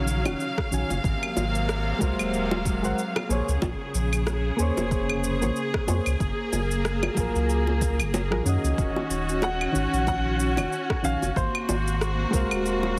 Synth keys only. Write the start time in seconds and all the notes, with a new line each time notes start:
Already playing: D#3 C#4 F#4 F5
0.25 D#3 C#4 F#4 F#5
0.71 D#3 C#4 F#4 G#5
1.99 G#3 F#4 A#4
2.03 C5 F5
2.82 G#3 F#4 A#4 C5 F#5
3.29 A#3 G#4 C5 C#5
4.57 A#3 G#4 C5
4.62 C#5
5.41 A#3 G#4 C5 C#5
5.87 A#3 G#4 C5 C#5
7.15 F#3 F4 G#4
7.20 A#4
8.31 F#3 F4 G#4 A#4
8.43 D#3 C#4
8.47 F#4 D#5
9.72 D#3 C#4 F#4
9.78 F#5
10.56 D#3 C#4 F#4 F#5
11.02 D#3 C#4 F#4 G#5
12.31 G#3 F#4 A#4
12.35 C5 F5